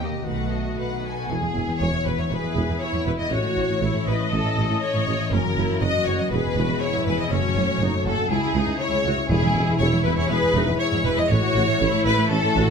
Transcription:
Already playing: D#2 D#3 D#4 G4 A#4 D#5
0.00 A#3 G4 D#5
0.09 B2
0.14 D#4
0.18 F#4
0.23 B1 F#4 B4
0.27 B2 A3 D#4 B4 F#5
0.52 F#4 A4 D#5
0.77 B1 B2 D#4 B4 F#5
1.04 F#4 A4 G#5
1.29 E1 E2 E3 B3 E4 G#4
1.41 E2 B3
1.54 E1 E2 E4
1.67 E2 B4
1.79 E1 E2 E4 C#5
1.92 E2 E5
2.05 E1 E2 B4 B5
2.18 E2 C#5 E5
2.29 E1 E2 B3 E4 G#4 B4 B5
2.42 E2 E5
2.55 E1 E2 B4
2.69 E2 E4
2.80 B3 E4 C#5
2.93 E2 E4
3.05 E1 E2 B3 B4
3.18 E2 E4 D#5
3.30 A1 A2 C#4 E4 F#4 C#5
3.43 A2 E3
3.56 A1 A2 A3
3.69 A2 E4
3.81 A1 A2 E4 C#5
3.94 A2 A4
4.06 A1 A2 B4 D#5 E5
4.18 A2 C#6
4.30 A1 A2 C#4 E4 A4 E5
4.44 A2 A4
4.56 A1 A2 C#5
4.70 A2 E4
4.81 A3 C#4 E4 C#5
4.94 A2 E3
5.06 A1 A2 A3
5.20 A2 E3
5.30 F#1 F#2 C#4 F#4 A#4
5.44 F#2 C#3
5.56 F#1 F#2 A#3 E4
5.69 F#2 F#4
5.80 F#1 F#2 F#4 C#5 D#5
5.95 F#2 A#4
6.06 F#1 F#2 C#5 F#5
6.19 F#2 D#5 C#6
6.31 E1 E2 B3 G#4 B4
6.45 E2 B2
6.56 E1 E2 G#3 F#4
6.68 E2
6.72 G#4
6.80 E4 C#5 E5
6.93 E2 G#4
7.06 E1 E2 B4 G#5
7.19 E2 D#5 E6
7.31 F#1 F#2 A3 C#4 F#4 C#5
7.44 F#2 C#3
7.56 F#1 F#2 A3
7.69 F#2 F#4
7.79 F#1 F#2 D#4 C#5
7.93 F#2 A4
8.05 F#1 F#2 C#4 A4 F#5
8.17 F#2 C#6
8.30 C#2 C#3 G#3 E4 G#4
8.42 C#2 C#4
8.54 C#2 G#3 D#4
8.67 C#2 E4
8.79 G#3 E4 C#5
8.91 C#2 G#4
9.04 C#2 F#4 E5
9.16 C#2 C#6
9.29 E1 E2 E3 G#3 E4 G#4
9.42 E2 G#3
9.54 E1 E2 E4
9.68 E2 B4
9.78 E1 E2 E4 G#4 C#5
9.92 E2 E5
10.04 E1 E2 B4 B5
10.17 E2 C#5 G#5
10.29 E1 E2 G#3 E4 G#4 B4 B5
10.43 E2 E5
10.54 E1 E2 D#4 G#4
10.67 E2 B4
10.78 E4 C#5
10.92 E2 G#3
11.04 E1 E2 E4 B4
11.17 E2 G#3 D#5
11.28 A1 A2 A3 E4 F#4 C#5
11.41 A2 E3
11.53 A1 A2 A3
11.66 A2 E4
11.78 A1 A2 E4
11.91 A2 A4
12.04 A1 A2 B4 E5
12.17 A2 C#6
12.29 A1 A2 A3 C#4 E4 A4 E5
12.43 A2 A4
12.55 A1 A2 F#4 C#5
12.67 A2

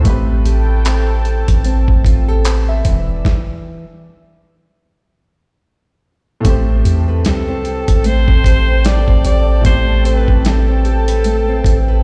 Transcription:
Already playing: F4 E5
0.01 A2 A3
0.05 A1 A3 B3 G4 A4 B4 G5 A5, kick, closed hi-hat
0.10 C4 B4
0.45 A1 G4, closed hi-hat
0.85 C4, clap, closed hi-hat
1.25 B4, closed hi-hat
1.48 A1, kick, closed hi-hat
1.64 C4, closed hi-hat
1.88 A1, kick
2.05 A1 F4, kick, closed hi-hat
2.28 G4 A4
2.45 B4 C5, clap, closed hi-hat
2.69 E5
2.85 E1 E3 D5 E6, kick, closed hi-hat
3.25 kick, snare
6.41 A2 A3
6.45 A1 A3 C4 G4 A4 G5 A5, kick, closed hi-hat
6.50 C5
6.68 C4
6.85 E2 G4, closed hi-hat
7.08 B4
7.25 C2 G4 A4, snare, closed hi-hat
7.48 C4
7.65 G4, closed hi-hat
7.88 A1, kick, closed hi-hat
8.04 A3 C5, closed hi-hat
8.28 A1 C4, kick
8.44 A1 G4, kick, closed hi-hat
8.68 B4
8.85 G4 D5, snare, closed hi-hat
9.08 A1 C4, kick
9.25 A1 G4 D5, closed hi-hat
9.61 A2 A3
9.65 A1 A3 C4 G4 C5, kick, closed hi-hat
9.70 D5
9.88 C4
10.05 G4 B4, closed hi-hat
10.28 A1 B4, kick
10.45 G4 A4, snare, closed hi-hat
10.68 C4
10.85 G4, closed hi-hat
11.08 B4, closed hi-hat
11.24 A3, closed hi-hat
11.48 C4
11.64 A1 G4, kick, closed hi-hat
11.88 B4

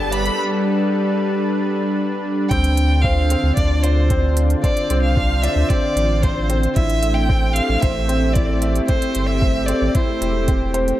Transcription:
Already playing: G1 G3 B3 D4 A4 B4 D5 A5
0.12 D5 B5, closed hi-hat
0.26 closed hi-hat
2.49 D2 D3 C4 G5, kick, closed hi-hat
2.61 F4, closed hi-hat
2.74 C5, closed hi-hat
3.01 C5 F5, kick
3.30 C4, closed hi-hat
3.43 D2
3.56 D2 D4 D5, kick, closed hi-hat
3.82 C5 D5, closed hi-hat
4.10 C4, kick, closed hi-hat
4.37 closed hi-hat
4.50 closed hi-hat
4.62 C5 D5, kick, closed hi-hat
4.77 closed hi-hat
4.90 C2 C4, closed hi-hat
5.02 F5
5.17 D4, kick
5.42 D5 E5, closed hi-hat
5.56 D2
5.69 C4 D5, kick, closed hi-hat
5.96 A1, closed hi-hat
6.22 C5, kick, closed hi-hat
6.50 C4, closed hi-hat
6.63 closed hi-hat
6.74 A1 A3 E4 E5, kick, closed hi-hat
6.86 C4, closed hi-hat
7.02 E5, closed hi-hat
7.14 G5
7.21 G4
7.29 C4, kick
7.53 F5, closed hi-hat
7.69 A1
7.80 A1 C5 E5, kick, closed hi-hat
8.09 C4, closed hi-hat
8.33 E4 D5, kick, closed hi-hat
8.62 E5, closed hi-hat
8.75 closed hi-hat
8.86 C4 C5, kick, closed hi-hat
9.02 closed hi-hat
9.15 G1, closed hi-hat
9.27 E5
9.42 C5, kick
9.66 C4 D5, closed hi-hat
9.82 A1
9.95 E4 C5, kick, closed hi-hat
10.21 E1 E4, closed hi-hat
10.48 C4, kick, closed hi-hat
10.74 C5, closed hi-hat
10.88 closed hi-hat

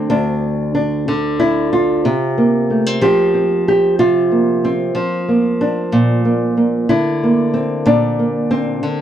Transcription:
Already playing: D3 C4
0.10 D2 D4
0.75 D4
1.08 D3
1.40 E4
1.73 F4
2.05 C3 C4
2.38 A#3
2.70 A3
2.86 C4
3.01 F3 G4
3.34 C4
3.68 G4
3.99 C3 F4
4.32 A#3
4.65 C4
4.95 F3
5.28 A#3
5.61 D4
5.92 A#2
6.25 A#3
6.57 A#3
6.89 D3 E4
7.23 A#3
7.54 C4
7.86 A#2 D4
8.19 A#3
8.51 C4
8.83 D3

